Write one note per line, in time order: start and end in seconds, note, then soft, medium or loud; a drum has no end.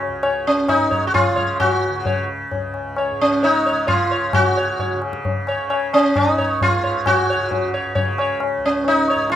0.00 0.68 G#2 medium
0.00 1.30 C#3 medium
0.07 2.51 C#2 medium
0.23 0.44 C#5 soft
0.23 tabla na medium
0.47 0.70 C#4 medium
0.68 3.11 G#2 medium
0.68 1.07 D#4 medium
0.68 tabla na medium
0.68 tabla ge medium
0.91 1.12 C#5 soft
0.91 tabla ge medium
1.07 1.14 F#4 medium
1.14 1.59 F4 medium
1.14 tabla na medium
1.14 tabla ge medium
1.30 1.90 C#3 medium
1.36 1.58 C#5 soft
1.36 tabla ge soft
1.60 2.25 F#4 medium
1.60 tabla na medium
1.60 tabla ge medium
1.90 3.72 C#3 medium
2.05 2.28 C#5 soft
2.05 tabla tin medium
2.05 tabla ge medium
2.51 6.17 C#2 medium
2.51 tabla tin medium
2.51 tabla ge medium
2.74 tabla na soft
2.96 3.19 C#5 soft
2.96 tabla na medium
3.11 4.32 G#2 medium
3.21 3.44 C#4 medium
3.43 3.87 D#4 medium
3.43 3.64 C#5 soft
3.43 tabla tin medium
3.66 3.86 C#5 soft
3.72 4.94 C#3 medium
3.87 4.34 F4 medium
3.87 4.09 C#5 soft
3.87 tabla tin medium
3.87 tabla ge medium
4.11 4.33 C#5 soft
4.32 6.76 G#2 medium
4.32 4.99 F#4 medium
4.32 tabla na loud
4.32 tabla ge medium
4.57 4.78 C#5 soft
4.79 5.01 C#5 soft
4.79 tabla tin medium
4.79 tabla ge medium
4.94 5.56 C#3 medium
5.02 tabla na medium
5.13 tabla ke medium
5.25 tabla tin medium
5.25 tabla ge medium
5.47 5.69 C#5 soft
5.47 tabla na medium
5.56 7.36 C#3 medium
5.70 5.91 C#5 soft
5.70 tabla na medium
5.93 6.17 C#4 medium
5.93 tabla na medium
6.16 8.57 C#2 medium
6.16 6.62 D#4 medium
6.16 tabla na medium
6.16 tabla ge medium
6.38 6.59 C#5 soft
6.38 tabla ge soft
6.61 7.06 F4 medium
6.61 tabla tin medium
6.61 tabla ge medium
6.76 9.15 G#2 medium
6.84 7.05 C#5 soft
7.06 7.70 F#4 medium
7.06 tabla na loud
7.06 tabla ge medium
7.30 7.50 C#5 soft
7.36 7.97 C#3 medium
7.51 tabla tin medium
7.51 tabla ge medium
7.74 7.94 C#5 soft
7.95 9.36 C#3 medium
7.95 8.17 C#5 soft
7.95 tabla tin medium
7.95 tabla ge medium
8.18 8.40 C#5 soft
8.18 tabla na medium
8.40 tabla na medium
8.58 9.36 C#2 medium
8.65 8.88 C#4 medium
8.85 9.31 D#4 medium
8.85 tabla tin medium
9.10 9.30 C#5 soft
9.15 9.36 G#2 medium
9.30 9.36 F4 medium
9.30 tabla te medium